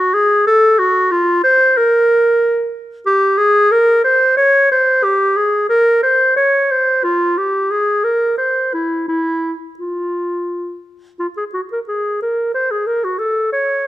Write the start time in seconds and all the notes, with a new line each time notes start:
Already playing: F#4
0.14 G#4
0.47 A4
0.79 F#4
1.12 F4
1.44 C5
1.77 A#4
3.06 G4
3.38 G#4
3.72 A#4
4.04 C5
4.37 C#5
4.72 C5
5.04 G4
5.37 G#4
5.69 A#4
6.03 C5
6.37 C#5
6.71 C5
7.04 F4
7.38 G4
7.71 G#4
8.04 A#4
8.38 C5
8.74 E4
9.08 E4
9.79 F4
11.19 F4
11.37 G#4
11.54 F#4
11.73 A#4
11.88 G#4
12.22 A#4
12.54 C5
12.71 G#4
12.87 A#4
13.04 F#4
13.19 A4
13.53 C#5